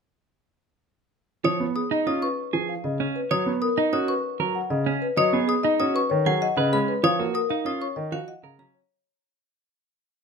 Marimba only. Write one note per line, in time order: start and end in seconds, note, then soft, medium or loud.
1.76 1.96 G#4 medium
1.92 2.12 D#5 medium
2.23 2.43 B4 soft
2.69 2.89 F5 soft
2.84 3.04 D#5 medium
3.16 3.36 B4 medium
3.62 3.82 A#4 medium
3.77 3.98 D#5 medium
4.09 4.29 B4 medium
4.55 4.75 F#5 medium
4.70 4.91 D#5 medium
5.02 5.22 B4 medium
5.17 5.37 D#5 medium
5.48 5.68 G#4 medium
5.63 5.84 D#5 medium
5.95 6.15 B4 medium
6.10 6.31 C#5 medium
6.41 6.62 F#5 medium
6.57 6.77 D#5 medium
6.88 7.09 B4 medium
7.04 7.24 F5 medium
7.34 7.55 A#4 medium
7.50 7.71 F5 medium
7.81 8.02 C#5 medium
7.96 8.17 D#5 medium
8.29 8.49 F#5 medium
8.44 8.64 F5 medium
8.75 8.95 C#5 medium